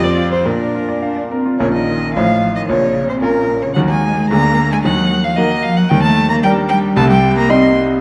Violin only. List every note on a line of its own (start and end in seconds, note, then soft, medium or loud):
0.04 0.31 D5 loud
0.32 0.47 C5 medium
0.45 1.30 A#4 medium
1.59 1.72 C#5 medium
1.73 2.13 D#5 loud
2.14 2.55 F5 loud
2.56 2.61 D#5 medium
2.69 3.08 C#5 loud
3.09 3.14 C5 medium
3.21 3.64 A#4 loud
3.62 3.73 C#5 medium
3.74 3.80 F#5 loud
3.89 4.29 G#5 loud
4.29 4.69 A#5 loud
4.72 4.77 G#5 medium
4.83 5.26 F#5 loud
5.24 5.38 F5 loud
5.36 5.64 D#5 loud
5.63 5.78 F5 loud
5.77 5.91 F#5 loud
5.89 6.02 G5 loud
6.02 6.29 A5 loud
6.29 6.35 A#5 loud
6.43 6.51 G5 loud
6.69 6.77 G5 loud
6.96 7.09 A5 loud
7.09 7.35 G5 loud
7.38 7.51 A#5 loud
7.50 7.76 C6 loud